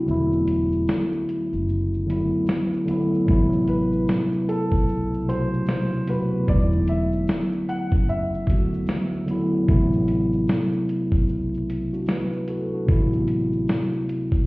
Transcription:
0.00 0.10 C4 medium
0.00 0.31 D4 medium
0.00 0.31 F#4 medium
0.06 0.84 E1 medium
0.06 1.61 D3 medium
0.06 1.61 F#3 medium
0.06 1.62 A3 medium
0.06 1.63 B3 medium
0.06 shaker medium
0.11 1.63 E4 loud
0.32 shaker soft
0.47 closed hi-hat medium
0.47 shaker soft
0.72 shaker soft
0.87 snare loud
0.87 shaker medium
1.13 shaker soft
1.29 closed hi-hat medium
1.29 shaker soft
1.53 2.29 F#1 medium
1.53 shaker soft
1.69 shaker medium
1.94 shaker soft
2.06 2.84 D3 medium
2.06 2.85 F#3 medium
2.06 2.85 A3 medium
2.06 2.86 B3 medium
2.10 2.86 E4 medium
2.10 closed hi-hat medium
2.10 shaker soft
2.46 snare loud
2.46 shaker medium
2.73 shaker soft
2.85 3.25 D3 medium
2.85 3.26 F#3 medium
2.85 3.27 A3 medium
2.85 3.27 B3 medium
2.85 closed hi-hat medium
2.85 shaker soft
2.91 3.28 E4 medium
3.15 shaker soft
3.25 4.04 A1 medium
3.25 3.35 B2 medium
3.25 4.81 F#3 medium
3.25 4.82 A3 medium
3.25 4.83 B3 medium
3.25 kick loud
3.25 shaker medium
3.30 4.84 C3 medium
3.30 4.83 E4 loud
3.53 shaker medium
3.68 4.51 B4 medium
3.68 closed hi-hat medium
3.68 shaker soft
3.92 shaker soft
4.07 snare loud
4.07 shaker medium
4.32 shaker soft
4.49 5.31 A4 medium
4.49 closed hi-hat medium
4.49 shaker soft
4.72 5.48 B1 medium
4.72 kick medium
4.89 shaker medium
5.14 shaker soft
5.25 6.06 B2 medium
5.25 6.04 C3 medium
5.25 6.04 F#3 medium
5.25 6.05 A3 medium
5.25 5.67 C5 medium
5.30 6.06 F#4 medium
5.30 closed hi-hat medium
5.30 shaker soft
5.54 shaker soft
5.66 6.06 C5 medium
5.66 snare loud
5.66 shaker medium
5.93 shaker soft
6.05 6.45 C3 medium
6.05 6.46 F#3 medium
6.05 6.46 A3 medium
6.05 6.47 B3 medium
6.05 6.50 B4 medium
6.05 closed hi-hat medium
6.05 shaker soft
6.10 6.48 F#4 medium
6.46 7.24 E1 medium
6.46 8.01 D3 medium
6.46 8.01 F#3 medium
6.46 8.02 A3 medium
6.46 8.03 B3 medium
6.46 6.90 D5 loud
6.46 kick loud
6.46 shaker medium
6.51 6.57 D#4 medium
6.57 8.07 E4 medium
6.72 shaker medium
6.88 7.71 E5 medium
6.88 closed hi-hat medium
6.88 shaker soft
7.12 shaker soft
7.27 snare loud
7.27 shaker medium
7.53 shaker soft
7.69 8.10 F#5 loud
7.69 closed hi-hat medium
7.69 shaker soft
7.92 8.69 F#1 medium
7.92 kick medium
8.09 9.25 E5 medium
8.09 shaker medium
8.34 shaker soft
8.46 9.24 D3 medium
8.46 9.25 F#3 medium
8.46 9.25 A3 medium
8.46 9.26 B3 medium
8.46 kick medium
8.50 9.26 F#4 medium
8.50 closed hi-hat medium
8.50 shaker soft
8.74 shaker soft
8.86 snare loud
8.86 shaker medium
9.13 shaker soft
9.26 9.65 D3 medium
9.26 9.66 F#3 medium
9.26 9.67 A3 medium
9.26 9.67 B3 medium
9.26 closed hi-hat medium
9.26 shaker soft
9.31 9.68 E4 loud
9.66 10.44 A1 loud
9.66 9.75 B2 medium
9.66 11.22 F#3 medium
9.66 11.22 A3 medium
9.66 11.23 B3 medium
9.66 kick loud
9.66 shaker medium
9.71 11.24 C3 medium
9.71 11.23 E4 medium
9.93 shaker medium
10.08 closed hi-hat medium
10.08 shaker soft
10.33 shaker soft
10.48 snare loud
10.48 shaker medium
10.73 shaker soft
10.89 closed hi-hat medium
10.89 shaker soft
11.12 11.89 B1 medium
11.12 kick medium
11.29 shaker medium
11.54 shaker soft
11.70 closed hi-hat medium
11.70 shaker soft
11.93 12.08 D4 medium
11.93 12.07 F#4 medium
11.93 shaker soft
12.06 12.46 B4 medium
12.06 snare loud
12.06 shaker medium
12.33 shaker soft
12.48 12.72 F#4 medium
12.48 12.72 A4 medium
12.48 closed hi-hat medium
12.48 shaker soft
12.74 13.12 D4 soft
12.74 13.12 F#4 medium
12.86 13.64 A1 loud
12.86 14.41 C3 medium
12.86 14.42 F#3 medium
12.86 14.42 A3 medium
12.86 14.43 B3 medium
12.86 kick loud
12.86 shaker medium
12.91 14.44 E4 loud
13.13 shaker medium
13.28 closed hi-hat medium
13.28 shaker soft
13.53 shaker soft
13.68 snare loud
13.68 shaker medium
13.93 shaker soft
14.09 closed hi-hat medium
14.09 shaker soft
14.32 14.46 B1 medium
14.32 kick medium
14.32 shaker soft

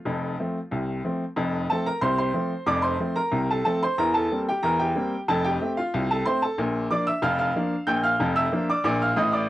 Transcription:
0.00 0.69 F4 medium
0.00 0.33 F5 medium
0.05 0.33 F1 medium
0.05 0.34 F2 medium
0.39 0.57 F3 soft
0.39 0.57 A3 soft
0.39 0.58 C4 medium
0.71 0.99 C2 medium
0.71 0.99 C3 medium
1.04 1.22 F3 soft
1.04 1.23 A3 soft
1.04 1.23 C4 medium
1.36 1.64 F1 medium
1.36 1.64 F2 medium
1.70 1.88 F3 soft
1.70 1.88 A3 medium
1.70 1.89 C4 medium
1.70 1.86 A4 medium
1.70 1.86 A5 medium
1.86 2.02 A#4 medium
1.86 2.03 A#5 loud
2.01 2.30 C2 medium
2.01 2.30 C3 medium
2.01 2.17 C5 medium
2.01 2.17 C6 loud
2.18 2.64 C5 medium
2.18 2.65 C6 medium
2.34 2.52 F3 medium
2.34 2.52 A3 soft
2.34 2.52 C4 medium
2.66 2.95 F1 medium
2.66 2.95 F2 medium
2.66 2.83 D5 medium
2.66 2.83 D6 loud
2.82 3.14 C5 medium
2.82 3.14 C6 medium
3.00 3.18 F3 medium
3.00 3.18 A3 soft
3.00 3.19 C4 medium
3.16 3.47 A#4 medium
3.16 3.47 A#5 loud
3.31 3.60 C2 medium
3.31 3.60 C3 medium
3.51 3.65 A4 medium
3.51 3.63 A5 medium
3.65 3.83 F3 soft
3.65 3.83 A3 medium
3.65 3.84 C4 medium
3.65 3.81 A4 medium
3.65 3.82 A5 loud
3.83 3.98 C5 medium
3.83 3.99 C6 medium
3.98 4.26 E2 medium
3.98 4.26 E3 medium
3.98 4.14 A#4 medium
3.98 4.14 A#5 loud
4.14 4.45 A4 medium
4.14 4.40 A5 medium
4.31 4.49 G3 soft
4.31 4.49 A#3 soft
4.31 4.49 C4 medium
4.49 4.63 G4 medium
4.49 4.64 G5 medium
4.63 4.91 E2 medium
4.63 4.91 E3 medium
4.63 4.79 A#4 medium
4.63 4.79 A#5 medium
4.79 5.25 G4 medium
4.79 5.18 G5 medium
4.96 5.14 G3 medium
4.96 5.14 A#3 medium
4.96 5.14 C4 medium
5.28 5.56 F1 medium
5.28 5.56 F2 loud
5.28 5.44 A4 medium
5.28 5.45 A5 medium
5.44 5.75 G4 medium
5.44 5.70 G5 loud
5.61 5.79 A3 medium
5.61 5.79 C4 medium
5.77 6.08 F4 medium
5.77 6.08 F5 medium
5.94 6.21 C2 medium
5.94 6.21 C3 medium
6.11 6.26 A4 medium
6.11 6.26 A5 medium
6.26 6.44 A3 medium
6.26 6.44 C4 medium
6.26 6.41 C5 medium
6.26 6.42 C6 loud
6.42 6.58 A4 medium
6.42 6.58 A5 medium
6.58 6.86 A#1 medium
6.58 6.86 A#2 medium
6.91 7.09 F3 soft
6.91 7.09 A#3 soft
6.91 7.09 D4 medium
6.91 7.06 D5 medium
6.91 7.07 D6 loud
7.07 7.23 E5 medium
7.07 7.23 E6 loud
7.22 7.50 F1 medium
7.22 7.50 F2 medium
7.22 7.38 F5 medium
7.22 7.37 F6 loud
7.39 7.85 F5 medium
7.39 7.85 F6 loud
7.56 7.73 F3 medium
7.56 7.74 A#3 medium
7.56 7.74 D4 medium
7.87 8.13 A#1 medium
7.87 8.13 A#2 medium
7.87 8.03 G5 medium
7.87 8.03 G6 loud
8.04 8.34 F5 medium
8.04 8.30 F6 loud
8.20 8.46 F1 medium
8.20 8.46 F2 loud
8.36 8.67 E5 medium
8.36 8.62 E6 loud
8.52 8.70 F3 medium
8.52 8.70 A#3 medium
8.52 8.70 D4 medium
8.70 8.84 D5 medium
8.70 8.83 D6 loud
8.84 9.10 A#1 medium
8.84 9.11 A#2 loud
8.84 9.00 D5 medium
8.84 9.01 D6 loud
9.02 9.17 F5 medium
9.02 9.18 F6 loud
9.16 9.45 A1 medium
9.16 9.44 A2 loud
9.16 9.33 D#5 medium
9.16 9.33 D#6 loud
9.32 9.49 D5 medium
9.32 9.49 D6 medium

